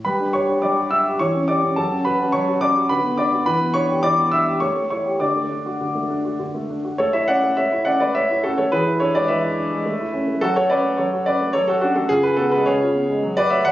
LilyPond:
\new Staff \with { instrumentName = "Grand piano" } { \time 3/4 \key d \major \tempo 4 = 106 << { <b' b''>8 <cis'' cis'''>8 <d'' d'''>8 <e'' e'''>8 <cis'' cis'''>8 <d'' d'''>8 | <a' a''>8 <b' b''>8 <cis'' cis'''>8 <d'' d'''>8 <b' b''>8 <d'' d'''>8 | <b' b''>8 <cis'' cis'''>8 <d'' d'''>8 <e'' e'''>8 <cis'' cis'''>8 <cis'' cis'''>8 | <d'' d'''>2 r4 |
\key a \major <a' cis''>16 <cis'' e''>16 <d'' fis''>8 <cis'' e''>8 <d'' fis''>16 <b' d''>16 <cis'' e''>8 <fis' a'>16 <a' cis''>16 | <gis' b'>8 <a' cis''>16 <b' d''>16 <b' e''>2 | <fis' a'>16 <a' cis''>16 <b' d''>8 <a' cis''>8 <b' d''>8 <a' cis''>16 <fis' a'>16 <d' fis'>16 <fis' a'>16 | <eis' gis'>16 <gis' b'>16 <fis' a'>16 <gis' b'>16 <gis' cis''>4~ <gis' cis''>16 <b' d''>16 <cis'' e''>16 <d'' fis''>16 | } \\ { g16 d'16 g'16 d'16 g16 g'16 d'16 g'16 e16 cis'16 g'16 cis'16 | fis16 cis'16 fis'16 cis'16 fis16 fis'16 cis'16 fis'16 d16 b16 d'16 fis'16 | e16 b16 d'16 g'16 e16 b16 d'16 g'16 a16 a16 e'16 g'16 | d16 a16 d'16 fis'16 d16 a16 d'16 fis'16 d16 a16 d'16 fis'16 |
a16 e'16 cis'16 a16 a16 e'16 cis'16 a16 a16 e'16 cis'16 a16 | e16 e'16 d'16 gis16 e16 e'16 d'16 gis16 a16 e'16 cis'16 a16 | fis16 fis'16 cis'16 a16 fis16 fis'16 cis'16 a16 fis8 cis'16 a16 | cis16 eis'16 b16 gis16 cis16 eis'16 b16 gis16 fis16 fis'16 a16 fis16 | } >> }